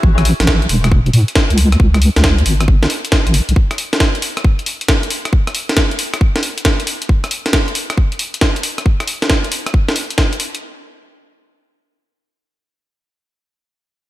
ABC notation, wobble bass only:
X:1
M:4/4
L:1/16
Q:"Swing 16ths" 1/4=136
K:C#phr
V:1 name="Wobble bass" clef=bass
A,,,3 A,,,3 E,,,4 A,, z2 C,,3 | C,,3 C,,3 G,,,4 z3 G,,, z B,,, | z16 | z16 |
z16 | z16 | z16 | z16 |]